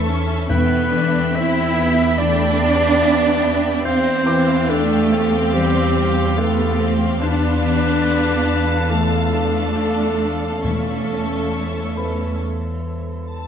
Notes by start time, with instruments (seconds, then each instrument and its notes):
Already playing: synth drone E2, double bass section E2, ambient pad A4 E5 C#6, grand piano B4 B5, violin section E5 A5 C#6
0.08 marimba E2, viola section C#4
0.49 synth drone E2, double bass section E2, timpani E2, marimba E2, viola section B3, cello section B3, ambient pad G4 E5 G5, clarinet B4, violin section E5 G5 B5
0.92 marimba E3, viola section D4
1.35 marimba E2, viola section C4, cello section E4, clarinet E5
1.77 marimba E2, viola section B3
2.18 marimba E3, viola section A3, cello section D4, clarinet D5
2.61 marimba E2, viola section B3
3.02 marimba E2
3.44 marimba E2
3.85 synth drone E2, marimba E2, double bass section E2, viola section C4, cello section C4, ambient pad G4 F5 C6, clarinet C5, violin section F5 G5
4.26 viola section E3, marimba E3, grand piano D6
4.70 marimba E2, cello section A3, viola section D4, clarinet A4
5.13 marimba E2, viola section C4
5.54 marimba E3, cello section G3, clarinet G4
5.96 marimba E2
6.38 marimba E2, cello section A3, viola section B3, clarinet A4
6.80 marimba E2, viola section C4
7.22 marimba E2, double bass section E2, synth drone E2, cello section B3, viola section D4, ambient pad A4 D5 F5, clarinet B4, violin section F5 A5
7.64 marimba E3
8.06 marimba E2
8.47 marimba E2
8.90 marimba E3, viola section E3, cello section A3, clarinet A4
9.33 marimba E2, viola section D4
9.76 marimba E2
10.20 marimba E2
10.63 double bass section E2, synth drone E2, timpani E2, marimba E2, cello section A3, viola section C#4, ambient pad A4 C#5 E5, clarinet A4, violin section E5 A5 C#6
11.09 marimba E3
11.53 marimba E2
11.97 marimba E2, grand piano B4 B5
13.31 violin section A5